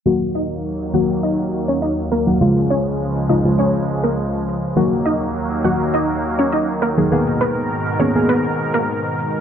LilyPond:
<<
  \new Staff \with { instrumentName = "Synth pluck" } { \time 4/4 \key ees \minor \tempo 4 = 102 r8 <ees' ees''>16 r8. <ges' ges''>16 r16 <ees' ees''>16 r8 <des' des''>16 <ees' ees''>16 r16 <bes bes'>16 r16 | r8 <des' des''>16 r8. <ees' ees''>16 r16 <des' des''>16 r8 <bes bes'>16 r4 | r8 <ees' ees''>16 r8. <ges' ges''>16 r16 <ees' ees''>16 r8 <des' des''>16 <ees' ees''>16 r16 <bes bes'>16 r16 | r8 <ces' ces''>16 r8. <des' des''>16 r16 <ces' ces''>16 r8 <bes bes'>16 r4 | }
  \new Staff \with { instrumentName = "Synth stab" } { \time 4/4 \key ees \minor <ees ges bes ges'>4~ <ees ges bes ges'>16 r16 <ees ges bes ges'>4. r8. <ees ges bes ges'>16 | <des f aes f'>4~ <des f aes f'>16 r16 <des f aes f'>16 <des f aes f'>4. r8. | <ees ges bes ges'>4~ <ees ges bes ges'>16 r16 <ees ges bes ges'>4. r8. <ees ges bes aes'>16 | <ees bes ces' aes'>4~ <ees bes ces' aes'>16 r16 <ees bes ces' aes'>16 <ees bes ces' aes'>4. r8. | }
  \new Staff \with { instrumentName = "Supersaw synth" } { \clef bass \time 4/4 \key ees \minor << { <ees, ges bes>1 | <des, f aes>1 | <ees, ges bes>1 | <aes, ces bes'>1 | } \\ { ees1 | des1 | ees1~ | ees1 | } >> }
>>